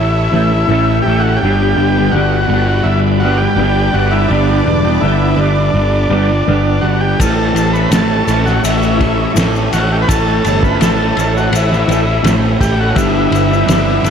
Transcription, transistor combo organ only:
0.00 1.00 E4 medium
1.02 1.23 G4 medium
1.19 1.38 F#4 medium
1.36 2.14 G4 medium
2.11 2.88 F#4 medium
2.83 3.00 E4 medium
3.19 3.40 F#4 medium
3.38 3.95 G4 medium
3.94 4.13 F#4 medium
4.11 4.31 E4 medium
4.28 5.04 D4 medium
5.01 5.40 E4 medium
5.36 6.87 D4 medium
6.81 7.01 F#4 medium
7.00 7.20 G4 medium
7.20 7.76 A4 medium
7.73 7.90 B4 medium
7.92 8.48 A4 medium
8.46 8.63 F#4 medium
8.64 9.33 E4 medium
9.73 9.92 F#4 medium
9.93 9.97 G4 medium
10.02 10.09 B4 medium
10.09 10.64 A4 loud
10.64 10.80 B4 loud
10.84 11.33 A4 medium
11.37 11.55 F#4 medium
11.56 12.22 E4 medium
12.61 12.79 G4 loud
12.80 12.98 F#4 medium
12.96 14.10 E4 loud

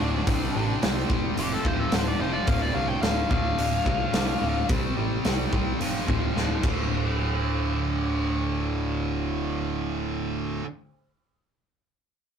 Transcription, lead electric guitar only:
0.00 0.81 D4 medium
1.40 1.52 G4 loud
1.52 1.67 A4 medium
1.67 1.80 C5 medium
1.80 1.94 A4 medium
1.94 2.07 C5 medium
2.08 2.21 D5 medium
2.21 2.33 C5 medium
2.33 2.47 D5 medium
2.48 2.61 F5 medium
2.62 2.75 D5 medium
2.74 2.88 F5 loud
2.88 3.01 G5 medium
3.02 3.29 F5 medium
3.32 4.66 F5 medium

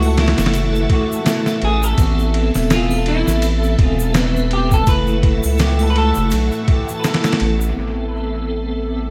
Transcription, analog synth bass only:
0.00 0.35 C#2 medium
0.39 0.87 F#1 medium
1.63 1.95 A1 medium
1.98 2.51 A1 loud
2.56 3.24 E1 medium
3.27 3.76 A1 loud
3.79 4.85 E1 medium
4.88 5.40 F#1 loud
5.45 6.13 C#2 medium
6.17 6.32 F#1 loud
6.33 6.51 B1 medium
7.41 7.73 A1 medium
7.78 9.10 A1 medium

